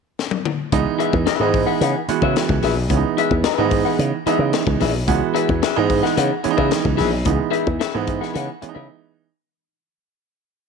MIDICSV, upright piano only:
0, 0, Header, 1, 2, 480
1, 0, Start_track
1, 0, Key_signature, 4, "minor"
1, 0, Tempo, 543971
1, 640, Time_signature, 4, 2, 24, 8
1, 9425, End_track
2, 0, Start_track
2, 0, Title_t, "Upright piano"
2, 0, Program_c, 0, 0
2, 638, Note_on_c, 0, 56, 87
2, 640, Note_on_c, 0, 63, 107
2, 642, Note_on_c, 0, 52, 88
2, 642, Note_on_c, 0, 59, 76
2, 1101, Note_off_c, 0, 56, 0
2, 1102, Note_off_c, 0, 63, 0
2, 1103, Note_off_c, 0, 52, 0
2, 1103, Note_off_c, 0, 59, 0
2, 1238, Note_on_c, 0, 51, 71
2, 1239, Note_on_c, 0, 56, 87
2, 1240, Note_on_c, 0, 59, 79
2, 1241, Note_on_c, 0, 63, 107
2, 1295, Note_on_c, 0, 52, 90
2, 1296, Note_off_c, 0, 51, 0
2, 1702, Note_off_c, 0, 56, 0
2, 1702, Note_off_c, 0, 59, 0
2, 1703, Note_off_c, 0, 63, 0
2, 1730, Note_off_c, 0, 52, 0
2, 1842, Note_on_c, 0, 52, 91
2, 1842, Note_on_c, 0, 56, 80
2, 1843, Note_on_c, 0, 59, 81
2, 1843, Note_on_c, 0, 66, 92
2, 2396, Note_off_c, 0, 52, 0
2, 2396, Note_off_c, 0, 56, 0
2, 2397, Note_off_c, 0, 59, 0
2, 2397, Note_off_c, 0, 66, 0
2, 2556, Note_on_c, 0, 52, 77
2, 2559, Note_on_c, 0, 56, 78
2, 2559, Note_on_c, 0, 59, 78
2, 2560, Note_on_c, 0, 61, 72
2, 2617, Note_on_c, 0, 63, 88
2, 2618, Note_off_c, 0, 61, 0
2, 3021, Note_off_c, 0, 52, 0
2, 3022, Note_off_c, 0, 59, 0
2, 3023, Note_off_c, 0, 56, 0
2, 3052, Note_off_c, 0, 63, 0
2, 3160, Note_on_c, 0, 51, 73
2, 3161, Note_on_c, 0, 56, 80
2, 3161, Note_on_c, 0, 59, 89
2, 3161, Note_on_c, 0, 63, 113
2, 3218, Note_off_c, 0, 51, 0
2, 3218, Note_on_c, 0, 52, 90
2, 3624, Note_off_c, 0, 56, 0
2, 3624, Note_off_c, 0, 59, 0
2, 3624, Note_off_c, 0, 63, 0
2, 3652, Note_off_c, 0, 52, 0
2, 3763, Note_on_c, 0, 56, 80
2, 3765, Note_on_c, 0, 52, 84
2, 3765, Note_on_c, 0, 59, 72
2, 3766, Note_on_c, 0, 63, 100
2, 4318, Note_off_c, 0, 56, 0
2, 4319, Note_off_c, 0, 52, 0
2, 4319, Note_off_c, 0, 59, 0
2, 4320, Note_off_c, 0, 63, 0
2, 4480, Note_on_c, 0, 52, 94
2, 4480, Note_on_c, 0, 56, 88
2, 4481, Note_on_c, 0, 66, 93
2, 4482, Note_on_c, 0, 59, 84
2, 4944, Note_off_c, 0, 52, 0
2, 4945, Note_off_c, 0, 56, 0
2, 4945, Note_off_c, 0, 59, 0
2, 4945, Note_off_c, 0, 66, 0
2, 5083, Note_on_c, 0, 52, 100
2, 5085, Note_on_c, 0, 56, 96
2, 5086, Note_on_c, 0, 59, 85
2, 5086, Note_on_c, 0, 63, 116
2, 5546, Note_off_c, 0, 52, 0
2, 5547, Note_off_c, 0, 56, 0
2, 5548, Note_off_c, 0, 59, 0
2, 5548, Note_off_c, 0, 63, 0
2, 5681, Note_on_c, 0, 56, 81
2, 5682, Note_on_c, 0, 61, 82
2, 5684, Note_on_c, 0, 52, 97
2, 5684, Note_on_c, 0, 59, 82
2, 5741, Note_off_c, 0, 61, 0
2, 5741, Note_on_c, 0, 63, 108
2, 6238, Note_off_c, 0, 56, 0
2, 6240, Note_off_c, 0, 52, 0
2, 6240, Note_off_c, 0, 59, 0
2, 6268, Note_off_c, 0, 63, 0
2, 6403, Note_on_c, 0, 59, 69
2, 6406, Note_on_c, 0, 52, 79
2, 6406, Note_on_c, 0, 56, 78
2, 6406, Note_on_c, 0, 63, 86
2, 6867, Note_off_c, 0, 59, 0
2, 6868, Note_off_c, 0, 52, 0
2, 6868, Note_off_c, 0, 56, 0
2, 6868, Note_off_c, 0, 63, 0
2, 7009, Note_on_c, 0, 52, 90
2, 7009, Note_on_c, 0, 56, 82
2, 7010, Note_on_c, 0, 63, 98
2, 7011, Note_on_c, 0, 59, 88
2, 7470, Note_off_c, 0, 52, 0
2, 7470, Note_off_c, 0, 56, 0
2, 7470, Note_off_c, 0, 63, 0
2, 7471, Note_off_c, 0, 59, 0
2, 7606, Note_on_c, 0, 52, 80
2, 7608, Note_on_c, 0, 56, 68
2, 7609, Note_on_c, 0, 61, 75
2, 7610, Note_on_c, 0, 59, 72
2, 7664, Note_off_c, 0, 61, 0
2, 7667, Note_on_c, 0, 63, 94
2, 8160, Note_off_c, 0, 52, 0
2, 8161, Note_off_c, 0, 56, 0
2, 8162, Note_off_c, 0, 59, 0
2, 8190, Note_off_c, 0, 63, 0
2, 9425, End_track
0, 0, End_of_file